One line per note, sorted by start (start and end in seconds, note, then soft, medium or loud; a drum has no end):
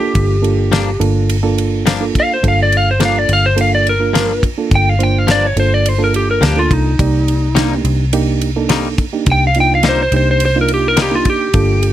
0.00 0.36 A#3 medium
0.00 0.36 D4 medium
0.00 0.36 F4 medium
0.00 0.99 G4 medium
0.00 0.36 A4 medium
0.15 0.97 G1 loud
0.15 kick loud
0.15 ride medium
0.42 0.91 A#3 medium
0.42 0.91 D4 medium
0.42 0.91 F4 medium
0.42 0.91 A4 medium
0.42 ride medium
0.72 0.89 G2 medium
0.72 0.89 F3 medium
0.72 0.90 A#3 loud
0.72 0.90 D4 loud
0.72 snare loud
0.72 ride medium
1.00 2.11 G1 medium
1.00 1.36 A#3 medium
1.00 1.36 D4 medium
1.00 1.36 F4 medium
1.00 1.36 A4 loud
1.00 ride medium
1.30 ride medium
1.43 1.91 A#3 medium
1.43 1.91 D4 medium
1.43 1.91 F4 medium
1.43 1.91 A4 loud
1.58 ride medium
1.86 2.03 G2 medium
1.86 2.04 F3 loud
1.86 2.04 A#3 medium
1.86 2.04 D4 loud
1.86 snare loud
1.86 ride medium
2.00 2.36 A#3 medium
2.00 2.36 D4 medium
2.00 2.36 F4 medium
2.00 2.36 A4 medium
2.15 kick medium
2.15 ride medium
2.20 2.31 F5 medium
2.34 2.45 C5 medium
2.43 3.25 G1 loud
2.43 2.91 A#3 medium
2.43 2.91 D4 medium
2.43 2.91 F4 medium
2.43 2.91 A4 medium
2.43 kick loud
2.43 ride medium
2.48 2.60 F5 medium
2.63 2.77 D5 medium
2.72 ride medium
2.77 2.89 F5 loud
2.91 3.02 C5 medium
2.99 3.17 G2 medium
2.99 3.18 F3 medium
2.99 3.48 A#3 medium
2.99 3.18 A#3 medium
2.99 3.48 D4 medium
2.99 3.18 D4 medium
2.99 3.48 F4 medium
2.99 3.48 A4 medium
2.99 snare loud
2.99 ride medium
3.05 3.19 F5 medium
3.19 3.33 D5 medium
3.29 4.39 G1 loud
3.29 ride medium
3.33 3.45 F5 loud
3.46 3.58 C5 medium
3.56 3.92 A#3 medium
3.56 3.93 D4 medium
3.56 3.92 F4 medium
3.56 3.93 A4 medium
3.56 ride medium
3.61 3.73 F5 medium
3.75 3.87 D5 medium
3.87 4.43 A#4 medium
3.87 ride medium
4.00 4.47 A#3 medium
4.00 4.48 D4 medium
4.00 4.48 F4 medium
4.00 4.48 A#4 medium
4.14 4.31 G2 medium
4.14 4.32 F3 medium
4.14 4.32 A#3 medium
4.14 4.32 D4 medium
4.14 snare loud
4.14 ride medium
4.43 kick medium
4.43 ride medium
4.58 4.93 A#3 medium
4.58 4.93 D4 medium
4.58 4.93 F4 medium
4.58 4.93 A4 medium
4.71 5.53 G1 loud
4.71 kick loud
4.71 ride medium
4.75 4.89 G5 medium
4.89 5.03 F5 medium
4.99 5.47 A#3 medium
4.99 5.47 D4 medium
4.99 5.47 F4 medium
4.99 5.47 C5 medium
4.99 ride medium
5.03 5.18 G5 medium
5.18 5.30 F5 medium
5.27 5.45 G2 medium
5.27 5.45 F3 medium
5.27 5.46 A#3 medium
5.27 5.46 D4 medium
5.27 snare loud
5.27 ride medium
5.31 5.46 D5 medium
5.46 5.58 C#5 medium
5.56 6.38 G1 medium
5.56 5.92 A#3 medium
5.56 5.93 D4 medium
5.56 5.93 F4 medium
5.56 5.93 A4 medium
5.56 5.74 C5 medium
5.56 ride medium
5.74 5.89 D5 medium
5.86 6.01 C5 medium
5.86 ride medium
5.98 6.46 A#3 medium
5.98 6.47 D4 medium
5.98 6.47 F4 medium
5.98 6.47 A4 medium
6.04 6.15 A#4 medium
6.14 6.29 G4 medium
6.14 ride medium
6.31 6.45 A#4 medium
6.41 6.67 D2 medium
6.41 6.59 G2 medium
6.41 6.59 F3 medium
6.41 6.60 A#3 medium
6.41 6.60 D4 medium
6.41 6.58 G4 medium
6.41 snare loud
6.41 ride medium
6.56 6.92 A#3 medium
6.56 6.92 D4 medium
6.56 6.92 F4 medium
6.56 6.73 F4 medium
6.56 6.92 A4 medium
6.71 6.96 C2 medium
6.71 7.83 D#4 loud
6.71 kick medium
6.71 ride medium
6.99 7.81 C2 medium
6.99 7.47 A#3 medium
6.99 7.47 D#4 medium
6.99 7.47 G4 medium
6.99 7.47 D5 medium
6.99 kick loud
6.99 ride medium
7.28 ride medium
7.55 7.73 C3 medium
7.55 7.73 G3 medium
7.55 8.03 A#3 medium
7.55 7.74 A#3 loud
7.55 8.04 D4 medium
7.55 8.04 D#4 medium
7.55 7.74 D#4 loud
7.55 8.04 G4 medium
7.55 snare loud
7.55 ride medium
7.84 8.94 C2 medium
7.84 ride medium
8.13 8.49 A#3 loud
8.13 8.49 D4 medium
8.13 8.49 D#4 medium
8.13 8.49 G4 loud
8.13 ride medium
8.41 ride medium
8.56 9.03 A#3 medium
8.56 9.04 D4 medium
8.56 9.04 D#4 medium
8.56 9.04 A4 medium
8.69 8.87 C3 medium
8.69 8.87 G3 medium
8.69 8.88 A#3 medium
8.69 8.88 D#4 loud
8.69 snare loud
8.69 ride medium
8.98 kick medium
8.98 ride medium
9.13 9.48 A#3 medium
9.13 9.49 D4 medium
9.13 9.49 D#4 medium
9.13 9.49 G4 medium
9.26 10.08 C2 loud
9.26 kick loud
9.26 ride medium
9.32 9.43 G5 medium
9.47 9.58 F5 medium
9.55 10.04 A#3 medium
9.55 10.04 D4 medium
9.55 10.03 D#4 medium
9.55 10.04 F4 medium
9.55 ride medium
9.60 9.72 G5 medium
9.75 9.86 F5 medium
9.83 10.01 C3 medium
9.83 10.01 G3 medium
9.83 10.02 A#3 medium
9.83 10.02 D#4 loud
9.83 snare loud
9.83 ride medium
9.89 10.00 C5 medium
10.03 10.14 C5 loud
10.12 11.22 C2 medium
10.12 10.48 A#3 medium
10.12 10.48 D4 medium
10.12 10.49 D#4 medium
10.12 10.49 G4 medium
10.12 ride medium
10.16 10.28 C5 medium
10.31 10.43 C5 medium
10.40 ride medium
10.45 10.57 C5 loud
10.55 11.03 A#3 medium
10.55 11.03 D4 medium
10.55 11.03 D#4 medium
10.55 11.03 F4 medium
10.61 10.72 A#4 medium
10.68 ride medium
10.74 10.88 G4 medium
10.88 11.00 A#4 medium
10.97 11.14 C3 medium
10.97 11.15 G3 medium
10.97 11.15 A#3 medium
10.97 11.15 D#4 medium
10.97 snare loud
10.97 ride medium
11.02 11.14 G4 loud
11.11 11.47 A#3 medium
11.11 11.47 D4 medium
11.11 11.47 D#4 medium
11.11 11.47 G4 medium
11.15 11.27 F4 medium
11.25 kick medium
11.25 ride medium
11.30 11.93 G4 medium
11.54 11.93 G1 loud
11.54 11.93 A#3 medium
11.54 11.93 D4 medium
11.54 11.93 F4 medium
11.54 11.93 A4 medium
11.54 kick loud
11.54 ride medium
11.83 ride medium